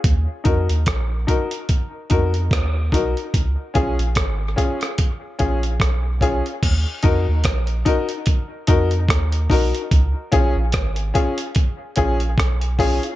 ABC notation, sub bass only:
X:1
M:4/4
L:1/16
Q:"Swing 16ths" 1/4=73
K:Ebm
V:1 name="Sub bass" clef=bass
E,, z F,, E,, B,,,2 z4 F,,2 E,,2 C,, z | D,, z C,, B,,, A,,,2 z4 B,,,2 C,,3 z | E,, z F,, E,, B,,,2 z4 F,,2 E,,2 C,, z | D,, z C,, B,,, A,,,2 z4 B,,,2 C,,3 z |]